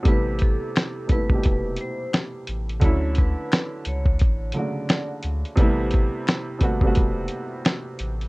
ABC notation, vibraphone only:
X:1
M:4/4
L:1/16
Q:"Swing 16ths" 1/4=87
K:Amix
V:1 name="Vibraphone"
B2 A4 B4 =c2 z4 | c2 B4 c4 d3 z3 | z16 |]